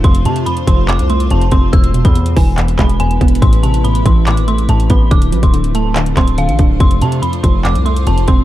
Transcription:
Already playing: A3 F4 C5
0.04 F1 F2 C4 C6, kick, closed hi-hat
0.15 closed hi-hat
0.25 C3 A5, closed hi-hat
0.36 closed hi-hat
0.46 F2 B5, closed hi-hat
0.57 closed hi-hat
0.67 F1 F3 C6, kick, closed hi-hat
0.88 F2 D6, clap, closed hi-hat
0.99 C2, closed hi-hat
1.10 A3 C6, closed hi-hat
1.20 closed hi-hat
1.30 F1 F2 A5, closed hi-hat
1.41 closed hi-hat
1.52 F1 C4 C6, kick, closed hi-hat
1.73 E1 E2 G#3 B3 E4 B4 E6, kick, closed hi-hat
1.84 closed hi-hat
1.94 B2, closed hi-hat
2.05 E2 B5, kick, closed hi-hat
2.15 E2, closed hi-hat
2.26 closed hi-hat
2.37 E1 E3 G#5, kick, open hi-hat
2.58 E2, clap, closed hi-hat
2.68 closed hi-hat
2.78 E1 G#3 B5, kick, clap, closed hi-hat
2.90 closed hi-hat
3.00 E2 G#5, closed hi-hat
3.11 closed hi-hat
3.21 E1 B3, kick, closed hi-hat
3.28 closed hi-hat
3.35 closed hi-hat
3.42 A1 A2 A3 C4 C6, kick, closed hi-hat
3.53 closed hi-hat
3.63 C3 A5, closed hi-hat
3.74 closed hi-hat
3.84 A2 B5, closed hi-hat
3.95 closed hi-hat
4.06 A1 E3 C6, kick, closed hi-hat
4.27 A2 D6, clap, closed hi-hat
4.37 G#1, closed hi-hat
4.48 A3 C6, closed hi-hat
4.53 A1
4.58 closed hi-hat
4.69 A1 A2 A5, closed hi-hat
4.80 closed hi-hat
4.90 A1 B3 B5, kick, closed hi-hat
5.11 D1 D3 D4 F4 C5 D6, kick, closed hi-hat
5.22 closed hi-hat
5.32 A1 F3, closed hi-hat
5.43 D1 C6, kick, closed hi-hat
5.53 D3, closed hi-hat
5.64 closed hi-hat
5.75 A3 A5, closed hi-hat
5.96 D3, clap, closed hi-hat
6.06 closed hi-hat
6.17 D1 C4 C6, kick, clap, closed hi-hat
6.28 closed hi-hat
6.38 D3 F5, closed hi-hat
6.49 A1, closed hi-hat
6.59 D1 D4, kick, closed hi-hat
6.80 F1 F2 C4 F4 C5 C6, kick, closed hi-hat
6.91 closed hi-hat
7.01 C3 A5, closed hi-hat
7.12 closed hi-hat
7.22 F2 B5, closed hi-hat
7.33 closed hi-hat
7.43 F1 F3 C6, kick, closed hi-hat
7.64 F2 D6, clap, closed hi-hat
7.75 C2, closed hi-hat
7.86 A3 C6, closed hi-hat
7.96 closed hi-hat
8.07 F1 F2 A5, closed hi-hat
8.18 closed hi-hat
8.28 E1 C4 C6, kick, closed hi-hat

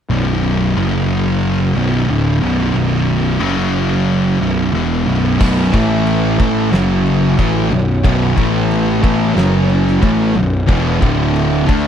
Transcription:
0.09 B0 B1 F#2 B2
0.76 F#1 F#2 C#3 F#3
1.74 B0 B1 F#2 B2
2.08 D1 D2 A2 D3
2.42 B0 B1 F#2 B2
2.74 B0 B1 F#2 B2
3.40 F#1 F#2 C#3 F#3
4.39 B0 B1 F#2 B2
4.73 E1 E2 B2 E3
5.07 B0 B1 F#2 B2
5.38 B0 B1 F#2 B2 F#4 C#5, kick, crash
5.72 A1 A2 E3 A3 E4 B4, kick, crash
6.07 crash
6.37 A1 A2 E3 A3 B3 F#4 C#5, kick, crash
6.70 F#1 F#2 C#3 F#3 C#4, snare, crash
7.07 crash
7.36 A1 A2 E3 A3 B3 C#5, kick, crash
7.70 B0 B1 F#2, crash
8.03 B0 B1 F#2 B2, kick, crash
8.34 A1 A2 E3 A3 E4 B4, kick, crash
8.71 crash
9.02 A1 A2 E3 A3 B3 F#4 C#5, kick, crash
9.35 F#1 F#2 C#3 F#3 C#4 F#4, snare, crash
9.69 crash
9.87 snare
10.02 A1 A2 E3 A3 B3 C#5, kick, crash
10.35 B0 B1 F#2, crash
10.67 E1 E2 B2 E3 E4 B4 F#5, kick, crash
11.00 D1 D2 A2 D3 D4 A4 E5, kick, crash
11.36 crash
11.67 D2 D3 A3 D4 E4 B4 F#5, kick, crash

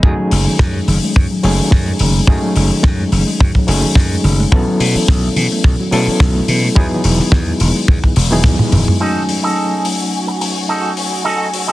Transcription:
0.03 F#2 D#3 F#3 A3 C#4 D#4 G#4, kick
0.19 F#3
0.31 F#1 G#3, open hi-hat
0.46 D#3, muted slap bass stroke
0.59 F#2, kick, snare
0.75 G#3
0.87 F#1 D#3, open hi-hat
1.03 G#3
1.16 F#2 D#3, kick
1.31 F#3
1.43 F#1 F#3 G#3 A3 C#4 D#4 G#4, open hi-hat
1.59 D#3, muted slap bass stroke
1.71 F#2 F#3, kick, snare
1.87 G#3
1.99 F#1 D#3, open hi-hat
2.15 G#3
2.27 F#2 D#3 F#3 A3 C#4 D#4 G#4, kick
2.43 F#3
2.56 F#1 G#3, open hi-hat
2.71 D#3, muted slap bass stroke
2.83 F#2 F#3, kick, snare
2.99 G#3
3.12 F#1 D#3, open hi-hat
3.27 G#3
3.40 F#2 D#3, kick
3.55 F#3, kick
3.67 F#1 F#3 G#3 A3 C#4 D#4 G#4, open hi-hat
3.83 D#3, muted slap bass stroke
3.95 F#2 F#3, kick, snare
4.11 G#3
4.24 F#1 D#3, open hi-hat
4.39 G#3
4.51 B1 E3 F#3 B3 C#4 E4 A4, kick
4.67 F#3
4.80 B2 A3, open hi-hat
4.95 E3, muted slap bass stroke
5.08 B1 F#3, kick, snare
5.23 A3
5.36 B2 E3, open hi-hat
5.51 A3
5.64 B1 E3, kick
5.79 F#3
5.91 B2 F#3 A3 B3 C#4 E4 A4, open hi-hat
6.07 E3, muted slap bass stroke
6.20 B1 F#3, kick, snare
6.35 A3
6.48 B2 E3, open hi-hat
6.63 A3
6.75 E2 D#3 F#3 B3 D#4 E4 G#4, kick
6.91 E3
7.04 E1 G#3, open hi-hat
7.19 D#3, muted slap bass stroke, snare
7.32 E2, kick, snare
7.47 G#3
7.60 E1 D#3, open hi-hat
7.75 G#3
7.88 E2 D#3, kick
8.04 E3, kick
8.16 E1 G#3, open hi-hat, high tom
8.30 D#3 F#3 B3 D#4 E4 G#4
8.44 E2 E3, kick, snare, mid tom
8.59 G#3, mid tom
8.72 E1 D#3, mid tom, open hi-hat
8.87 G#3, mid tom
9.00 F#3 A3 C#4 D#4 F#4 G#4 A4 G#5
9.29 open hi-hat
9.43 D#4 F#4 G#4 A4
9.85 open hi-hat
10.27 muted clean electric guitar stroke
10.40 muted clean electric guitar stroke, open hi-hat
10.56 muted clean electric guitar stroke
10.68 D#4 F#4 G#4 A4
10.97 open hi-hat
11.12 muted clean electric guitar stroke
11.24 D#4 F#4 G#4 A4
11.54 open hi-hat
11.67 D#4 F#4 G#4 A4

